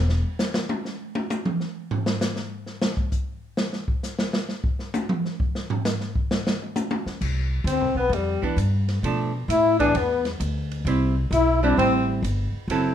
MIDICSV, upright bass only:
0, 0, Header, 1, 3, 480
1, 0, Start_track
1, 0, Key_signature, 0, "major"
1, 0, Tempo, 455927
1, 1845, Time_signature, 4, 2, 24, 8
1, 13630, End_track
2, 0, Start_track
2, 0, Title_t, "Upright bass"
2, 0, Program_c, 0, 32
2, 0, Note_on_c, 0, 28, 86
2, 233, Note_off_c, 0, 28, 0
2, 7589, Note_on_c, 0, 36, 75
2, 8039, Note_off_c, 0, 36, 0
2, 8046, Note_on_c, 0, 38, 83
2, 8219, Note_off_c, 0, 38, 0
2, 8219, Note_on_c, 0, 36, 55
2, 8361, Note_off_c, 0, 36, 0
2, 8367, Note_on_c, 0, 35, 61
2, 8515, Note_off_c, 0, 35, 0
2, 8521, Note_on_c, 0, 41, 81
2, 8833, Note_off_c, 0, 41, 0
2, 9018, Note_on_c, 0, 43, 82
2, 9492, Note_off_c, 0, 43, 0
2, 9507, Note_on_c, 0, 47, 78
2, 9977, Note_off_c, 0, 47, 0
2, 9982, Note_on_c, 0, 45, 82
2, 10455, Note_off_c, 0, 45, 0
2, 10471, Note_on_c, 0, 40, 83
2, 10940, Note_off_c, 0, 40, 0
2, 10947, Note_on_c, 0, 38, 88
2, 11414, Note_off_c, 0, 38, 0
2, 11421, Note_on_c, 0, 36, 78
2, 11896, Note_off_c, 0, 36, 0
2, 11903, Note_on_c, 0, 35, 87
2, 12378, Note_off_c, 0, 35, 0
2, 12397, Note_on_c, 0, 33, 81
2, 12865, Note_off_c, 0, 33, 0
2, 12870, Note_on_c, 0, 31, 84
2, 13172, Note_off_c, 0, 31, 0
2, 13346, Note_on_c, 0, 30, 78
2, 13630, Note_off_c, 0, 30, 0
2, 13630, End_track
3, 0, Start_track
3, 0, Title_t, "Muted upright bass strokes"
3, 7428, Note_on_c, 9, 29, 41
3, 7534, Note_off_c, 9, 29, 0
3, 8867, Note_on_c, 9, 29, 39
3, 8972, Note_off_c, 9, 29, 0
3, 13186, Note_on_c, 9, 29, 35
3, 13292, Note_off_c, 9, 29, 0
3, 13630, End_track
0, 0, End_of_file